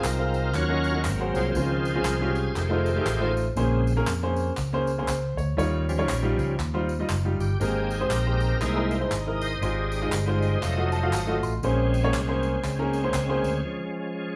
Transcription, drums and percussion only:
0.04 clap medium
0.04 tambourine loud
0.34 tambourine soft
0.54 clap medium
0.54 tambourine medium
0.84 tambourine soft
1.05 clap medium
1.05 tambourine medium
1.35 tambourine medium
1.55 tambourine medium
1.85 tambourine medium
2.05 clap loud
2.05 tambourine medium
2.35 tambourine soft
2.56 clap medium
2.56 tambourine medium
2.86 tambourine soft
3.06 clap medium
3.06 tambourine medium
3.37 tambourine medium
3.57 tambourine medium
3.87 tambourine medium
4.07 clap loud
4.07 tambourine loud
4.37 tambourine soft
4.57 clap medium
4.57 tambourine medium
4.87 tambourine medium
5.08 clap medium
5.08 tambourine medium
5.38 tambourine medium
5.59 tambourine medium
5.89 tambourine medium
6.09 clap loud
6.09 tambourine loud
6.39 tambourine soft
6.60 clap medium
6.60 tambourine medium
6.89 tambourine medium
7.09 clap medium
7.09 tambourine medium
7.40 tambourine medium
7.61 tambourine medium
7.91 tambourine medium
8.11 clap medium
8.11 tambourine loud
8.40 tambourine soft
8.61 clap medium
8.61 tambourine medium
8.91 tambourine soft
9.12 clap medium
9.12 tambourine medium
9.42 tambourine medium
9.62 tambourine medium
9.92 tambourine medium
10.12 clap loud
10.12 tambourine loud
10.42 tambourine soft
10.63 clap medium
10.63 tambourine medium
10.92 tambourine soft
11.13 clap medium
11.13 tambourine medium
11.43 tambourine medium
11.63 tambourine medium
11.94 tambourine medium
12.14 clap loud
12.14 tambourine loud
12.43 tambourine soft
12.64 clap medium
12.64 tambourine medium
12.93 tambourine medium
13.14 clap loud
13.14 tambourine medium
13.44 tambourine medium

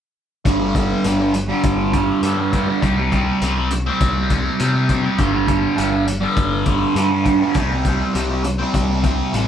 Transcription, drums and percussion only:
0.45 kick medium
0.45 closed hi-hat medium
0.75 kick medium
0.75 closed hi-hat soft
1.04 closed hi-hat medium
1.34 closed hi-hat soft
1.63 kick medium
1.63 closed hi-hat medium
1.93 kick medium
1.93 closed hi-hat medium
2.23 closed hi-hat medium
2.53 kick medium
2.53 closed hi-hat medium
2.82 kick medium
2.82 closed hi-hat medium
3.12 kick medium
3.12 closed hi-hat soft
3.42 closed hi-hat medium
3.71 closed hi-hat medium
4.00 kick medium
4.00 closed hi-hat medium
4.30 kick medium
4.30 closed hi-hat soft
4.59 closed hi-hat medium
4.89 kick medium
4.89 closed hi-hat soft
5.18 kick medium
5.18 closed hi-hat medium
5.48 kick medium
5.48 closed hi-hat soft
5.78 closed hi-hat medium
6.07 closed hi-hat medium
6.36 kick medium
6.36 closed hi-hat medium
6.66 kick medium
6.66 closed hi-hat medium
6.96 closed hi-hat medium
7.25 kick medium
7.25 closed hi-hat soft
7.54 kick medium
7.54 closed hi-hat medium
7.85 kick medium
7.85 closed hi-hat medium
8.15 closed hi-hat medium
8.44 closed hi-hat soft
8.74 kick medium
8.74 closed hi-hat medium
9.04 kick medium
9.04 closed hi-hat medium
9.34 closed hi-hat medium

